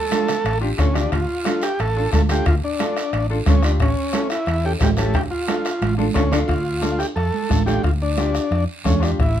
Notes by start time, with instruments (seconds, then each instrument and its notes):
Already playing: transistor combo organ A4
0.10 upright piano D4 F4 A4, bombo rim, high conga, high timbale, short guiro
0.28 bombo rim, low conga, high timbale, short guiro
0.44 fingered electric bass A1, bombo rim, high timbale, long guiro
0.61 upright piano D4 F4 G4
0.77 fingered electric bass D2, transistor combo organ C#4, upright piano D4 F4 A4, bombo low, bombo rim, high timbale, short guiro
0.93 upright piano D4 F4 G4, transistor combo organ D4, bombo rim, low conga, high timbale, short guiro
1.12 fingered electric bass D2, transistor combo organ F4, bombo low, bombo rim, high conga, high timbale, long guiro
1.45 upright piano D4 F4 A4, bombo rim, high conga, high timbale, short guiro
1.62 transistor combo organ G4, bombo rim, high timbale, short guiro
1.79 fingered electric bass A1, transistor combo organ A4, bombo rim, high conga, high timbale, long guiro
1.96 upright piano D4 F4 A4
2.11 fingered electric bass D2, upright piano D4 F4 A4, transistor combo organ A4, bombo low, bombo rim, high conga, high timbale, short guiro
2.29 upright piano D4 F4 A4, transistor combo organ G4, bombo rim, high conga, high timbale, short guiro
2.46 fingered electric bass D2, transistor combo organ F4, bombo low, bombo rim, high timbale, long guiro
2.64 transistor combo organ D4
2.79 upright piano D4 F4 A4, bombo rim, high conga, high timbale, short guiro
2.97 bombo rim, high timbale, short guiro
3.13 fingered electric bass A1, bombo rim, high conga, high timbale, long guiro
3.30 upright piano D4 F4 A4
3.46 fingered electric bass D2, transistor combo organ C#4, upright piano D4 F4 A4, bombo low, bombo rim, high conga, high timbale, short guiro
3.63 upright piano D4 F4 G4, transistor combo organ D4, bombo rim, high timbale, short guiro
3.80 fingered electric bass A1, transistor combo organ C#4, bombo low, bombo rim, high conga, high timbale, long guiro
4.13 upright piano C#4 E4 A4, bombo rim, high conga, high timbale, short guiro
4.30 transistor combo organ E4, bombo rim, high timbale, short guiro
4.46 fingered electric bass E2, bombo rim, high conga, high timbale, long guiro
4.64 upright piano C#4 E4 A4, transistor combo organ G4
4.79 fingered electric bass A1, upright piano C#4 E4 A4, transistor combo organ G4, bombo low, bombo rim, high conga, high timbale, low timbale, short guiro
4.97 upright piano C#4 E4 G4, transistor combo organ A4, bombo rim, high conga, high timbale, short guiro
5.14 fingered electric bass D2, transistor combo organ G4, bombo low, bombo rim, high conga, high timbale, long guiro
5.31 transistor combo organ F4
5.47 upright piano D4 F4 A4, bombo rim, high conga, high timbale, short guiro
5.65 bombo rim, high timbale, short guiro
5.81 fingered electric bass A1, bombo rim, high conga, high timbale, long guiro
5.98 upright piano D4 F4 A4, high conga
6.14 fingered electric bass D2, transistor combo organ C#4, upright piano D4 F4 A4, bombo low, bombo rim, low conga, high timbale, short guiro
6.32 transistor combo organ D4, upright piano D4 F4 A4, bombo rim, low conga, high timbale, short guiro
6.48 fingered electric bass D2, transistor combo organ F4, bombo low, bombo rim, high conga, long guiro
6.82 upright piano D4 F4 A4, bombo rim, high conga, short guiro
6.99 transistor combo organ G4, bombo rim, short guiro
7.16 fingered electric bass F2, transistor combo organ A4, bombo rim, high conga, long guiro
7.34 high conga
7.49 fingered electric bass A1, upright piano D4 F4 A4, bombo low, bombo rim, high conga, short guiro
7.66 upright piano D4 F4 A4, transistor combo organ G4, bombo rim, high conga, short guiro
7.83 fingered electric bass D2, transistor combo organ F4, bombo low, bombo rim, high conga, long guiro
8.02 transistor combo organ D4
8.17 upright piano D4 F4 G4, bombo rim, high conga, short guiro
8.35 bombo rim, short guiro
8.51 fingered electric bass F2, bombo rim, high conga, long guiro
8.84 fingered electric bass E2, transistor combo organ C#4, upright piano D4 F4 A4, bombo low, bombo rim, high conga, short guiro
9.00 upright piano D4 F4 G4, bombo rim, short guiro
9.04 transistor combo organ D4
9.19 fingered electric bass A1, transistor combo organ E4, bombo low, bombo rim, high conga, long guiro